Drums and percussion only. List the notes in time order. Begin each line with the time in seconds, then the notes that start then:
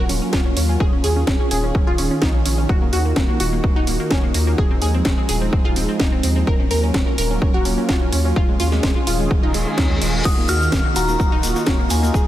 0.09 open hi-hat
0.33 kick, snare
0.57 open hi-hat
0.80 kick
1.04 open hi-hat
1.27 kick, snare
1.51 open hi-hat
1.75 kick
1.98 open hi-hat
2.22 kick, snare
2.46 open hi-hat
2.69 kick
2.93 open hi-hat
3.16 kick, snare
3.40 open hi-hat
3.64 kick
3.87 open hi-hat
4.11 kick, snare
4.34 open hi-hat
4.58 kick
4.82 open hi-hat
5.05 kick, snare
5.29 open hi-hat
5.53 kick
5.76 open hi-hat
6.00 kick, snare
6.23 open hi-hat
6.47 kick
6.71 open hi-hat
6.94 kick, snare
7.18 open hi-hat
7.42 kick
7.65 open hi-hat
7.89 kick, snare
8.13 open hi-hat
8.36 kick
8.60 open hi-hat
8.72 snare
8.83 kick, snare
9.07 open hi-hat
9.31 kick
9.54 open hi-hat
9.78 kick, snare
10.02 open hi-hat
10.25 kick, crash, shaker
10.48 open hi-hat, shaker
10.62 shaker
10.72 kick, snare, shaker
10.96 open hi-hat, shaker
11.08 shaker
11.19 kick, shaker
11.43 open hi-hat, shaker
11.56 shaker
11.66 kick, snare, shaker
11.90 open hi-hat, shaker
12.04 shaker
12.14 kick, shaker